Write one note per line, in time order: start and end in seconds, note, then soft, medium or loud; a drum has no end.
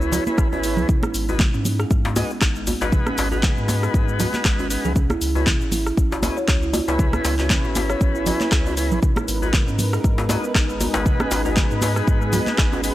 0.00 0.20 C#2 medium
0.00 0.24 B3 medium
0.00 0.24 C#4 medium
0.00 0.24 E4 medium
0.00 0.12 E4 medium
0.00 0.24 G#4 medium
0.00 0.24 B4 loud
0.00 shaker soft
0.12 open hi-hat medium
0.12 djembe tone loud
0.12 low conga loud
0.12 shaker loud
0.27 0.48 B3 medium
0.27 0.48 C#4 medium
0.27 0.48 E4 medium
0.27 0.38 E4 medium
0.27 0.48 G#4 medium
0.27 0.48 B4 medium
0.27 high conga loud
0.27 shaker soft
0.38 0.79 G#1 medium
0.38 0.51 G#4 medium
0.38 kick loud
0.38 cross-stick medium
0.38 shaker medium
0.52 0.88 B3 medium
0.52 0.62 C#4 medium
0.52 0.88 C#4 medium
0.52 0.88 E4 medium
0.52 0.88 G#4 medium
0.52 0.88 B4 loud
0.52 djembe tone medium
0.52 shaker soft
0.63 0.77 E4 medium
0.63 open hi-hat medium
0.63 shaker medium
0.77 0.85 C#2 medium
0.77 low conga loud
0.77 shaker soft
0.89 1.02 D#4 medium
0.89 kick loud
0.89 mid tom medium
0.89 shaker medium
1.03 1.13 G#3 medium
1.03 cross-stick medium
1.03 high conga loud
1.03 shaker soft
1.14 1.47 G#1 loud
1.14 1.28 B3 medium
1.14 open hi-hat medium
1.14 shaker medium
1.29 1.41 B3 medium
1.29 1.41 D#4 medium
1.29 1.41 F#4 medium
1.29 1.41 G#4 medium
1.29 1.41 B4 medium
1.29 djembe tone medium
1.29 shaker soft
1.39 1.53 G#3 medium
1.39 kick loud
1.39 clap loud
1.39 mid tom medium
1.39 high conga loud
1.39 shaker medium
1.54 1.85 G#2 medium
1.54 1.60 C#4 loud
1.54 shaker soft
1.65 open hi-hat medium
1.65 high conga medium
1.65 low conga medium
1.65 shaker loud
1.79 1.90 G#4 loud
1.79 cross-stick medium
1.79 shaker soft
1.91 2.23 G#2 medium
1.91 2.03 G#3 medium
1.91 kick loud
1.91 shaker medium
2.05 2.15 B3 medium
2.05 djembe slap loud
2.05 shaker soft
2.16 2.31 B3 medium
2.16 2.31 D#4 medium
2.16 2.31 F#4 medium
2.16 2.31 G#4 medium
2.16 2.31 D#5 loud
2.16 open hi-hat medium
2.16 djembe slap medium
2.16 high conga loud
2.16 djembe tone medium
2.16 shaker medium
2.30 2.41 B3 medium
2.30 shaker soft
2.41 2.74 G#1 medium
2.41 2.54 D#4 medium
2.41 kick loud
2.41 cross-stick medium
2.41 clap loud
2.41 shaker medium
2.56 2.66 G#3 medium
2.56 shaker soft
2.67 2.81 B3 medium
2.67 open hi-hat medium
2.67 djembe tone medium
2.67 high conga loud
2.67 shaker medium
2.81 3.12 G#1 medium
2.81 3.29 B3 loud
2.81 3.29 D#4 medium
2.81 3.29 F#4 medium
2.81 3.29 G#4 medium
2.81 3.29 B4 loud
2.81 djembe slap loud
2.81 shaker soft
2.92 3.05 G#3 medium
2.92 kick loud
2.92 mid tom medium
2.92 shaker soft
3.06 3.13 C#4 loud
3.06 cross-stick medium
3.06 high conga medium
3.06 shaker soft
3.18 3.50 G#1 loud
3.18 open hi-hat medium
3.18 djembe slap loud
3.18 shaker medium
3.31 4.68 B3 medium
3.31 4.68 D#4 medium
3.31 4.68 F#4 medium
3.31 3.42 G#4 loud
3.31 4.68 G#4 medium
3.31 4.68 B4 medium
3.31 djembe tone medium
3.31 shaker soft
3.43 3.56 G#3 medium
3.43 kick loud
3.43 clap loud
3.43 mid tom loud
3.43 high conga loud
3.43 shaker soft
3.57 3.88 G#2 medium
3.57 3.68 B3 medium
3.57 shaker soft
3.68 open hi-hat medium
3.68 djembe slap medium
3.68 high conga loud
3.68 shaker medium
3.83 3.93 B3 medium
3.83 cross-stick medium
3.83 shaker soft
3.94 4.26 G#2 medium
3.94 4.07 D#4 medium
3.94 kick loud
3.94 shaker soft
4.08 4.18 G#3 medium
4.08 shaker soft
4.19 4.33 B3 medium
4.19 open hi-hat medium
4.19 djembe tone medium
4.19 low conga loud
4.19 shaker medium
4.34 clap soft
4.34 high conga medium
4.34 shaker soft
4.45 4.77 G#1 medium
4.45 4.58 G#3 medium
4.45 kick loud
4.45 cross-stick medium
4.45 clap loud
4.45 shaker medium
4.59 4.65 C#4 loud
4.59 djembe tone medium
4.59 shaker soft
4.70 4.93 B3 medium
4.70 4.93 D#4 medium
4.70 4.93 F#4 medium
4.70 4.93 G#4 medium
4.70 4.93 B4 medium
4.70 open hi-hat medium
4.70 shaker medium
4.84 5.15 C#2 medium
4.84 4.95 G#4 loud
4.84 low conga loud
4.84 shaker soft
4.96 5.09 C#4 medium
4.96 kick loud
4.96 mid tom medium
4.96 shaker soft
5.10 5.21 E4 medium
5.10 cross-stick medium
5.10 high conga loud
5.10 shaker soft
5.21 5.53 C#2 loud
5.21 open hi-hat loud
5.21 shaker medium
5.35 5.48 B3 medium
5.35 5.48 C#4 medium
5.35 5.48 E4 medium
5.35 5.46 E4 medium
5.35 5.48 G#4 medium
5.35 5.48 B4 medium
5.35 djembe tone medium
5.35 shaker soft
5.47 kick loud
5.47 clap loud
5.47 mid tom medium
5.47 high conga loud
5.47 shaker soft
5.61 5.92 G#1 medium
5.61 5.71 C#4 medium
5.61 shaker soft
5.71 5.86 E4 medium
5.71 open hi-hat medium
5.71 high conga medium
5.71 low conga medium
5.71 shaker medium
5.86 cross-stick medium
5.86 shaker soft
5.97 6.30 G#1 medium
5.97 6.10 C#4 medium
5.97 kick loud
5.97 shaker medium
6.11 6.18 F#4 loud
6.11 djembe slap medium
6.11 shaker soft
6.23 6.38 B3 medium
6.23 6.38 C#4 medium
6.23 6.38 E4 medium
6.23 6.38 G#4 medium
6.23 6.38 D#5 medium
6.23 open hi-hat medium
6.23 djembe slap medium
6.23 djembe tone loud
6.23 high conga loud
6.23 shaker medium
6.37 6.47 C#5 loud
6.37 shaker soft
6.48 6.81 C#2 medium
6.48 6.61 C#4 medium
6.48 kick loud
6.48 cross-stick medium
6.48 clap loud
6.48 shaker soft
6.62 6.73 E4 medium
6.62 shaker soft
6.73 open hi-hat loud
6.73 djembe tone medium
6.73 high conga medium
6.73 shaker medium
6.88 7.19 C#2 medium
6.88 7.35 B3 medium
6.88 7.35 C#4 medium
6.88 7.35 E4 medium
6.88 6.99 E4 medium
6.88 7.35 G#4 medium
6.88 7.35 B4 loud
6.88 djembe slap medium
6.88 shaker soft
6.99 7.12 G#4 medium
6.99 kick loud
6.99 mid tom medium
6.99 shaker soft
7.13 7.24 C#4 medium
7.13 cross-stick medium
7.13 high conga loud
7.13 shaker soft
7.24 7.57 C#2 loud
7.24 7.38 E4 medium
7.24 open hi-hat loud
7.24 djembe slap loud
7.24 high conga medium
7.24 shaker medium
7.39 8.74 B3 medium
7.39 8.74 C#4 medium
7.39 8.74 E4 medium
7.39 8.74 G#4 medium
7.39 8.74 B4 medium
7.39 clap soft
7.39 djembe tone medium
7.39 shaker soft
7.50 7.63 C#4 medium
7.50 kick loud
7.50 clap loud
7.50 mid tom medium
7.50 high conga loud
7.50 shaker medium
7.64 7.95 G#1 medium
7.64 7.71 F#4 loud
7.64 shaker soft
7.75 open hi-hat medium
7.75 djembe slap medium
7.75 high conga medium
7.75 shaker medium
7.90 8.00 C#5 loud
7.90 cross-stick medium
7.90 shaker soft
8.01 8.33 G#1 medium
8.01 8.14 C#4 medium
8.01 kick loud
8.01 shaker medium
8.15 8.26 E4 medium
8.15 shaker soft
8.26 open hi-hat medium
8.26 djembe tone loud
8.26 low conga loud
8.26 shaker medium
8.41 8.51 E4 medium
8.41 clap soft
8.41 high conga medium
8.41 shaker soft
8.52 8.93 C#2 medium
8.52 kick loud
8.52 cross-stick medium
8.52 clap loud
8.52 shaker soft
8.66 8.76 C#4 medium
8.66 djembe tone medium
8.66 shaker soft
8.77 9.00 B3 medium
8.77 9.00 C#4 medium
8.77 8.91 E4 medium
8.77 9.00 E4 medium
8.77 9.00 G#4 medium
8.77 9.00 B4 medium
8.77 open hi-hat medium
8.77 shaker medium
8.91 8.99 G#1 medium
8.91 low conga loud
8.91 shaker soft
9.02 12.94 G#3 medium
9.02 9.15 D#4 medium
9.02 12.94 D#4 medium
9.02 11.04 A#4 medium
9.02 12.94 B4 medium
9.02 kick loud
9.02 mid tom medium
9.02 shaker medium
9.16 9.27 G#3 medium
9.16 cross-stick loud
9.16 high conga loud
9.16 shaker soft
9.28 9.60 G#1 loud
9.28 9.41 B3 medium
9.28 open hi-hat medium
9.28 shaker medium
9.42 9.55 B3 medium
9.42 9.55 D#4 medium
9.42 9.55 F#4 medium
9.42 9.55 G#4 medium
9.42 9.55 B4 medium
9.42 djembe tone medium
9.42 shaker soft
9.53 9.66 G#3 medium
9.53 kick loud
9.53 clap loud
9.53 mid tom medium
9.53 high conga loud
9.53 shaker medium
9.67 9.98 G#2 medium
9.67 9.73 C#4 loud
9.67 shaker soft
9.79 open hi-hat loud
9.79 high conga medium
9.79 low conga medium
9.79 shaker loud
9.93 10.03 G#4 loud
9.93 cross-stick medium
9.93 shaker soft
10.04 10.37 G#2 medium
10.04 10.17 G#3 medium
10.04 kick loud
10.04 shaker medium
10.18 10.29 B3 medium
10.18 djembe slap loud
10.18 shaker soft
10.29 10.45 B3 medium
10.29 10.45 D#4 medium
10.29 10.45 F#4 medium
10.29 10.45 G#4 medium
10.29 10.45 D#5 loud
10.29 open hi-hat medium
10.29 djembe slap medium
10.29 high conga loud
10.29 djembe tone loud
10.29 shaker medium
10.44 10.55 B3 medium
10.44 shaker soft
10.55 10.87 G#1 medium
10.55 10.68 D#4 medium
10.55 kick loud
10.55 cross-stick loud
10.55 clap loud
10.55 shaker medium
10.69 10.79 G#3 medium
10.69 shaker soft
10.80 10.94 B3 medium
10.80 open hi-hat medium
10.80 high conga medium
10.80 djembe tone medium
10.80 shaker medium
10.94 11.26 G#1 medium
10.94 11.42 B3 medium
10.94 11.42 D#4 medium
10.94 11.42 F#4 medium
10.94 11.42 G#4 medium
10.94 11.42 B4 loud
10.94 djembe slap loud
10.94 shaker soft
11.06 11.19 G#3 medium
11.06 12.94 G#4 medium
11.06 kick loud
11.06 mid tom medium
11.06 shaker medium
11.20 11.26 C#4 loud
11.20 cross-stick loud
11.20 high conga loud
11.20 shaker soft
11.31 11.63 G#1 loud
11.31 open hi-hat medium
11.31 djembe slap loud
11.31 shaker loud
11.45 12.81 B3 medium
11.45 12.81 D#4 medium
11.45 12.81 F#4 medium
11.45 11.55 G#4 loud
11.45 12.81 G#4 medium
11.45 12.81 B4 medium
11.45 djembe tone medium
11.45 shaker soft
11.57 11.69 G#3 medium
11.57 kick loud
11.57 clap loud
11.57 mid tom medium
11.57 high conga loud
11.57 shaker medium
11.71 12.02 G#2 medium
11.71 11.82 B3 medium
11.71 shaker soft
11.82 open hi-hat medium
11.82 djembe slap medium
11.82 high conga medium
11.82 shaker loud
11.96 12.07 B3 medium
11.96 cross-stick medium
11.96 shaker soft
12.07 12.40 G#2 medium
12.07 12.20 D#4 medium
12.07 kick loud
12.07 shaker medium
12.22 12.32 G#3 medium
12.22 shaker soft
12.33 12.46 B3 medium
12.33 open hi-hat loud
12.33 djembe tone medium
12.33 low conga loud
12.33 shaker loud
12.47 clap soft
12.47 high conga loud
12.47 shaker soft
12.58 12.91 G#1 medium
12.58 12.71 G#3 medium
12.58 kick loud
12.58 cross-stick medium
12.58 clap medium
12.58 shaker medium
12.72 12.79 C#4 loud
12.72 djembe tone medium
12.72 shaker soft
12.84 12.94 B3 medium
12.84 12.94 D#4 medium
12.84 12.94 F#4 medium
12.84 12.94 G#4 medium
12.84 12.94 B4 medium
12.84 open hi-hat medium
12.84 shaker loud